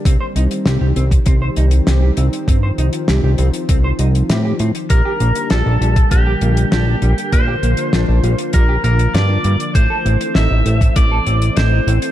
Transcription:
<<
  \new Staff \with { instrumentName = "Lead electric guitar" } { \time 4/4 \key g \minor \tempo 4 = 99 r1 | r1 | bes'4 a'4 g'4 g'4 | c''2 bes'8 bes'8 d''4 |
c''4 e''4 d''4 c''4 | }
  \new Staff \with { instrumentName = "Clean electric guitar" } { \time 4/4 \key g \minor c'16 c''16 ees'16 r16 g'16 g'16 c'16 r16 c'16 c''16 ees'16 r16 g'16 g'16 c'16 r16 | c'16 c''16 ees'16 r16 g'16 g'16 c'16 r16 c'16 c''16 ees'16 r16 g'16 g'16 c'16 r16 | g16 g'16 bes16 r16 d'16 d'16 g16 r16 g16 g'16 bes16 r16 d'16 d'16 g16 r16 | g16 g'16 bes16 r16 d'16 d'16 g16 r16 g16 g'16 bes16 r16 d'16 d'16 g16 r16 |
a16 a'16 c'16 r16 ees'16 ees'16 a16 r16 a16 a'16 c'16 r16 ees'16 ees'16 a16 r16 | }
  \new Staff \with { instrumentName = "Analog synth pad" } { \clef bass \time 4/4 \key g \minor << { <ees c'>1~ | <ees c'>1 | <d bes>1~ | <d bes>1 |
<e c'>1 | } \\ { g1 | f1 | g1 | f1 |
a1 | } >> }
  \new Staff \with { instrumentName = "Analog synth bass" } { \clef bass \time 4/4 \key g \minor c,16 r16 c,16 r16 c,16 c,16 c,8 c,8 c,8 c,8 c,16 r16 | g,,8 c,16 r16 c,16 c,16 c,16 r16 c,8 c,8 a,8 a,16 r16 | bes,,16 r16 bes,,16 r16 bes,,16 bes,,16 bes,,8 bes,,8 bes,,8 bes,,8 bes,,16 r16 | bes,8 bes,,16 r16 bes,,16 bes,,16 bes,,16 r16 bes,,8 bes,,8 g,8 g,16 r16 |
a,,16 r16 a,,16 r16 a,,16 a,,16 a,,8 a,,8 a,,8 a,,8 a,,16 r16 | }
  \new DrumStaff \with { instrumentName = "Drums" } \drummode { \time 4/4 <hh bd>8 hh16 hh16 <hh sn>8 hh16 <hh bd>16 <hh bd>8 hh16 hh16 <hh sn>8 hh16 hh16 | <hh bd>8 hh16 hh16 <hh sn>8 hh16 hh16 <hh bd>8 hh16 hh16 <hh sn>8 hh16 hh16 | <hh bd>8 hh16 hh16 <hh sn>8 hh16 <hh bd>16 <hh bd>8 hh16 hh16 <hh sn>8 hh16 hh16 | <hh bd>8 hh16 hh16 <hh sn>8 hh16 hh16 <hh bd>8 hh16 hh16 <hh sn>8 hh16 hh16 |
<hh bd>8 hh16 hh16 <hh sn>8 hh16 <hh bd>16 <hh bd>8 hh16 hh16 <hh sn>8 hh16 hh16 | }
>>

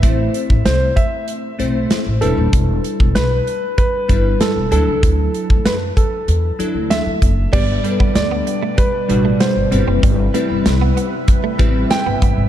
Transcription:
<<
  \new Staff \with { instrumentName = "Grand piano" } { \time 4/4 \key g \major \tempo 4 = 96 e''4 c''8 e''2 a'8~ | a'4 b'4 b'4 a'8 a'8~ | a'4 b'8 a'4. e''4 | d''4 d''4 b'4 c''8. r16 |
r2. g''4 | }
  \new Staff \with { instrumentName = "Analog synth pad" } { \time 4/4 \key g \major r1 | r1 | r1 | <b, g d' d''>2.~ <b, g d' d''>8 <c g e' b' e''>8~ |
<c g e' b' e''>1 | }
  \new Staff \with { instrumentName = "Synth keys" } { \time 4/4 \key g \major <a c' e' c''>4. r4 <a c' e' c''>4 <g d' e' b'>8~ | <g d' e' b'>4 r4. <g d' e' b'>4 <fis d' e' a'>8~ | <fis d' e' a'>4 r4. <fis d' e' a'>4~ <fis d' e' a'>16 r16 | <g b d' b'>8 <g b d' a' b'>4. r8 <b, g d' fis'>4 <g c' e' b'>8~ |
<g c' e' b'>8 <g c' e' b'>4. r8 <g c' e' b'>4~ <g c' e' b'>16 r16 | }
  \new Staff \with { instrumentName = "Clean electric guitar" } { \time 4/4 \key g \major r1 | r1 | r1 | g16 r8 b16 r16 b16 r16 a16 g16 r8 a16 b16 r8 c'16 |
g16 r16 a16 r8 b16 b16 r8 a16 g16 r8 b16 b16 r16 | }
  \new Staff \with { instrumentName = "Upright bass" } { \clef bass \time 4/4 \key g \major a,,8 r16 a,,16 c,8 r4 b,,8 r16 a,,16 e,,16 dis,,16 | e,,8 r16 e,,16 b,,8 r4 g,,8 r16 e,,16 d,16 cis,16 | d,8 r16 d,16 fis,8 r8 e,8 r16 d,8 d,16 fis,,8 | g,,8 r16 g,,16 d,8 r4 a,,8 r16 g,,16 g,,16 fis,,16 |
g,,8 r16 g,,16 c,8 r4 a,,8 r16 g,,16 g,,16 gis,,16 | }
  \new DrumStaff \with { instrumentName = "Drums" } \drummode { \time 4/4 <hh bd>8 hh16 bd16 <hh sn>8 <hh bd>8 hh8 hh8 <hh sn>8 hh8 | <hh bd>8 hh16 bd16 <hh sn>8 hh8 <hh bd>8 <hh bd>8 <hh sn>8 hh8 | <hh bd>8 hh16 bd16 <hh sn>8 <hh bd>8 hh8 hh8 <hh sn>8 <hh bd>8 | <cymc bd>8 hh16 bd16 <hh sn>8 hh8 <hh bd>8 hh8 <hh sn>8 hh8 |
<hh bd>8 hh8 <hh sn>8 hh8 <hh bd>8 <hh bd>8 <hh sn>8 <hh bd>8 | }
>>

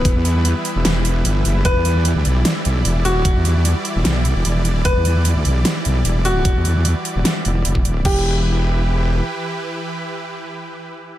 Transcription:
<<
  \new Staff \with { instrumentName = "Grand piano" } { \time 4/4 \key e \minor \tempo 4 = 150 b1 | b'4. r2 fis'8~ | fis'1 | b'4. r2 fis'8~ |
fis'1 | g'1~ | g'1 | }
  \new Staff \with { instrumentName = "Supersaw synth" } { \time 4/4 \key e \minor << { b'1 | d''1~ | d''1~ | d''1~ |
d''1 | <e e' g' b'>1~ | <e e' g' b'>1 | } \\ { <e g e'>1~ | <e g e'>1~ | <e g e'>1~ | <e g e'>1~ |
<e g e'>1 | r1 | r1 | } >> }
  \new Staff \with { instrumentName = "Wobble bass" } { \clef bass \time 4/4 \key e \minor e,,16 e,4 r8 e,,16 e,,4 g,,8 fis,,8 | e,,16 e,4 d,16 b,,8 r8 b,,8 e,,4 | e,,16 e,4 r8 e,,16 b,,8. e,,16 e,,4 | e,,16 e,4 d,16 b,,8 r8 b,,8 e,,4 |
e,,16 e,4 r8 e,,16 r8 e,,8 e,,4 | e,,2. r4 | r1 | }
  \new DrumStaff \with { instrumentName = "Drums" } \drummode { \time 4/4 <hh bd>8 hh8 hh8 hh8 <hh sn>8 hh8 hh8 hh8 | <hh bd>8 hh8 hh8 hh8 <hh sn>8 hh8 hh8 hh8 | <hh bd>8 hh8 hh8 hh8 <hh sn>8 hh8 hh8 hh8 | <hh bd>8 hh8 hh8 hh8 <hh sn>8 hh8 hh8 hh8 |
<hh bd>8 hh8 hh8 hh8 <hh sn>8 hh8 hh16 bd16 hh8 | <cymc bd>4 r4 r4 r4 | r4 r4 r4 r4 | }
>>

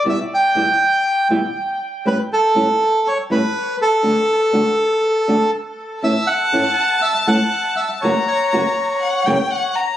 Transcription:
<<
  \new Staff \with { instrumentName = "Violin" } { \time 4/4 \key a \mixolydian \tempo 4 = 121 r1 | r1 | r1 | a''1 |
ais''2 fis''8 g''8 fis''8 ais''8 | }
  \new Staff \with { instrumentName = "Bandoneon" } { \time 4/4 \key a \mixolydian e''8 g''2 r4. | b'8 a'4. cis''8 b'4 a'8~ | a'2. r4 | e''8 fis''4. e''8 fis''4 e''8 |
cis''8 cis''2 r4. | }
  \new Staff \with { instrumentName = "Nylon-string guitar" } { \clef bass \time 4/4 \key a \mixolydian <e, b, e g b e'>8 r8 <e, b, e g b e'>8 r4 <e, b, e g b e'>8 r4 | <a, e g cis' e'>8 r8 <a, e g cis' e'>8 r4 <a, e g cis' e'>8 r4 | <d a d' fis'>8 r8 <d a d' fis'>8 r4 <d a d' fis'>8 r4 | <a, e a cis' e'>8 r8 <a, e a cis' e'>8 r4 <a, e a cis' e'>8 r4 |
<fis, cis e ais cis' fis'>8 r8 <fis, cis e ais cis' fis'>8 r4 <fis, cis e ais cis' fis'>8 r4 | }
>>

